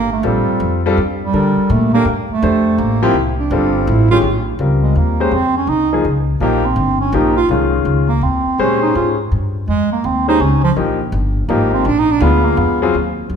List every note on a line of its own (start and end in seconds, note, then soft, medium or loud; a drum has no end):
0.00 0.23 G1 medium
0.00 0.10 A#3 loud
0.12 0.28 A3 medium
0.23 0.46 A#1 loud
0.23 0.79 G3 medium
0.23 0.85 G3 medium
0.23 0.80 C4 medium
0.23 0.79 F4 medium
0.23 0.80 A4 medium
0.48 muted upright bass stroke soft
0.60 0.95 F2 loud
0.86 0.96 G3 medium
0.86 0.96 C4 medium
0.86 0.97 F4 medium
0.86 0.97 A4 loud
0.97 1.32 G2 medium
1.22 1.72 G3 loud
1.33 1.55 D3 medium
1.33 1.89 D4 medium
1.33 1.89 G4 medium
1.33 1.89 A4 medium
1.33 1.89 A#4 medium
1.57 muted upright bass stroke soft
1.70 2.04 A#2 loud
1.70 1.93 A3 medium
1.93 2.05 A3 medium
1.93 2.05 A#3 loud
1.93 2.05 D4 medium
1.93 2.05 G4 medium
1.93 2.05 A#4 medium
2.05 2.27 G2 loud
2.30 2.80 A3 loud
2.30 muted upright bass stroke soft
2.42 2.77 F2 loud
2.42 2.97 D4 medium
2.42 2.98 G4 medium
2.42 2.98 A4 medium
2.42 2.98 C5 medium
2.78 3.13 A1 medium
2.78 3.05 A#3 loud
3.02 3.13 F3 medium
3.02 3.14 A#3 medium
3.02 3.15 C4 loud
3.02 3.14 E4 medium
3.02 3.14 G4 loud
3.14 3.49 C2 medium
3.40 3.90 D4 medium
3.51 3.86 G1 loud
3.51 4.07 G3 medium
3.51 4.07 C4 medium
3.51 4.07 F4 medium
3.51 4.07 A4 medium
3.87 4.21 A1 loud
3.87 4.10 E4 loud
4.11 4.22 D#3 medium
4.11 4.22 G#3 medium
4.11 4.22 C#4 medium
4.11 4.18 F4 loud
4.11 4.22 G4 medium
4.22 4.58 A#1 medium
4.59 4.94 C#2 loud
4.59 5.15 G3 medium
4.59 5.15 C4 soft
4.59 5.15 F4 soft
4.59 5.16 A#4 medium
4.83 4.99 G#3 medium
4.96 5.31 D#2 medium
4.96 5.34 A#3 medium
5.20 5.31 G#3 medium
5.20 5.31 C#4 medium
5.20 5.31 G4 medium
5.20 5.32 C5 medium
5.31 5.67 F2 medium
5.31 5.56 C4 loud
5.57 5.71 C#4 medium
5.67 6.03 C2 medium
5.67 5.93 D#4 loud
5.93 6.04 F3 medium
5.93 6.04 A#3 medium
5.93 6.04 D#4 medium
5.93 6.04 G#4 medium
6.05 6.40 C#2 medium
6.40 6.75 A#1 medium
6.40 6.63 F3 medium
6.40 6.67 A#3 loud
6.40 6.63 A#3 medium
6.40 6.63 D#4 medium
6.40 6.63 G4 medium
6.65 7.00 C4 loud
6.76 7.12 G1 loud
7.00 7.16 C#4 loud
7.12 7.48 A#1 loud
7.12 7.35 F3 medium
7.12 7.35 A#3 medium
7.12 7.36 D#4 medium
7.12 7.35 G4 medium
7.37 7.49 F4 loud
7.49 7.84 C2 loud
7.49 8.06 D#3 medium
7.49 8.06 G#3 medium
7.49 8.05 C#4 medium
7.49 8.06 F4 medium
7.85 8.21 C#2 loud
8.09 8.25 A#3 medium
8.21 8.44 D#2 medium
8.21 8.63 C4 medium
8.46 muted upright bass stroke soft
8.58 8.94 A#2 medium
8.58 9.14 G#3 medium
8.58 9.15 C#4 medium
8.58 8.82 C#4 loud
8.58 9.15 G4 medium
8.58 9.15 C5 medium
8.82 8.94 D#4 medium
8.95 9.30 G#2 medium
8.95 9.10 F4 medium
9.32 9.67 G2 medium
9.68 10.03 F2 medium
9.68 9.90 G#3 loud
9.92 10.07 A#3 medium
10.04 10.39 D#2 medium
10.04 10.28 C4 medium
10.28 10.39 G#3 medium
10.28 10.39 C#4 medium
10.28 10.43 D#4 loud
10.28 10.40 G4 medium
10.28 10.39 C5 medium
10.40 10.75 C#2 loud
10.40 10.63 C#4 loud
10.64 10.71 F3 loud
10.76 11.12 A#1 medium
10.76 10.98 F3 medium
10.76 10.98 A#3 medium
10.76 10.98 D#4 medium
10.76 10.98 G4 medium
11.12 11.48 G1 loud
11.48 11.84 G#1 loud
11.48 11.86 F3 medium
11.48 11.71 A#3 medium
11.48 11.86 A#3 medium
11.48 11.86 D#4 medium
11.48 11.86 G4 medium
11.73 11.88 C4 loud
11.85 12.20 A#1 loud
11.85 12.00 D4 loud
11.99 12.13 D#4 loud
12.11 12.25 D4 loud
12.20 12.56 D2 loud
12.20 12.77 G#3 medium
12.20 12.77 B3 medium
12.20 12.46 B3 loud
12.20 12.77 D4 medium
12.20 12.77 F4 medium
12.45 12.60 A#3 loud
12.57 12.93 F2 loud
12.57 12.88 B3 medium
12.82 12.93 F#3 medium
12.82 12.93 C4 medium
12.82 12.94 F4 medium
12.82 12.94 G#4 medium
12.94 13.29 D#2 medium
13.30 13.36 F#2 medium